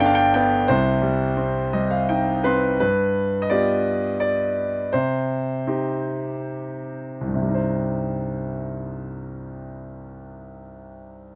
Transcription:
Already playing: G1 G2 D3 B3 D5 F5
0.00 D4 G5
0.06 F5
0.15 G5
0.34 B3 G5
0.68 C2 C3 C5
1.02 G3
1.37 C4
1.73 G3 D#5
1.91 F5
2.09 D#4 G5
2.44 C4 B4 C6
2.80 G2 B4
3.42 D#5
3.50 B3 F4 G4 D5
4.20 D5
4.93 C3 C5
5.67 C4 D#4 G4
7.21 C2
7.27 G2
7.34 C3
7.42 G3
7.48 D#4
7.54 C5

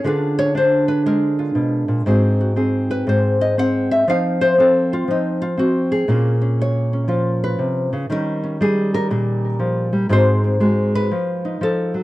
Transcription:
0.04 D3 D4 F4 G#4 B4
0.39 C#5
0.55 D4 C5
0.88 B4
1.06 G#3 A#4
1.39 F4
1.55 B2
1.88 A#2
2.06 G#2 C4 F#4 G#4
2.41 F#4
2.56 C4 G#4
2.91 B4
3.07 G#2 C5
3.41 D#5
3.58 C4 F#5
3.91 E5
4.07 F3 C4 D#4 F5
4.41 C5
4.58 C4 A4
4.93 F4
5.08 F3 D#4
5.42 F4
5.57 C4 F#4
5.92 G#4
6.08 A#2 A#3 C#4 F4
6.41 C#4
6.61 C#5
6.93 C#4
7.08 F3 F4
7.44 B4
7.59 C3
7.93 C#3
8.10 D#3 G3 C#4 D#4 A#4
8.44 C#4
8.61 G3 G#4
8.94 A#4
9.10 A#2 A#4
9.59 F3
9.93 G3
10.09 G#2 G#3 C4 F#4 C5
10.44 C4
10.60 G#3 F#4
10.95 B4
11.11 F3
11.45 D#4
11.61 F3 A4
11.94 F#3

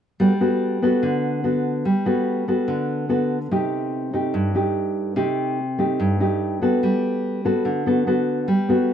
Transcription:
0.20 G3 B3 F#4 A4
0.40 B3 F#4 A4
0.82 B3 F#4 A4
1.03 D3
1.44 B3 F#4 A4
1.85 G3
2.06 B3 F#4 A4
2.48 B3 F#4 A4
2.68 D3
3.09 B3 F#4 A4
3.51 C3 A3 D#4 G4
4.13 A3 D#4 G4
4.34 G2
4.55 A3 D#4 G4
5.16 C3 A3 D#4 G4
5.78 A3 D#4 G4
6.00 G2
6.20 A3 D#4 G4
6.62 B3 F#4 A4
6.83 G3
7.45 B3 F#4 A4
7.65 D3
7.86 B3 F#4 A4
8.07 B3 F#4 A4
8.48 G3
8.69 B3 F#4 A4

